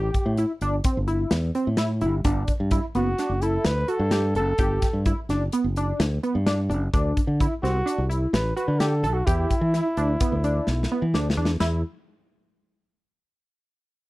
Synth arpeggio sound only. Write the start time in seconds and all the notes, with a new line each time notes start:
Already playing: G4
0.38 E4
0.62 D4
0.85 C4
1.08 E4
1.55 C4
1.78 E4
2.02 E4
2.25 D4
2.72 E4
2.95 B3
3.19 D4
3.43 E4
3.88 F#4
4.12 G4
4.36 A4
4.59 G4
5.06 E4
5.30 D4
5.53 B3
5.77 D4
6.23 B3
6.46 D4
6.70 D4
6.94 D4
7.41 E4
7.64 C4
7.86 D4
8.10 E4
8.56 F#4
8.80 G4
9.04 A4
9.27 G4
9.74 E4
9.97 D4
10.21 B3
10.44 D4
10.92 B3
11.14 D4
11.37 D4
11.60 E4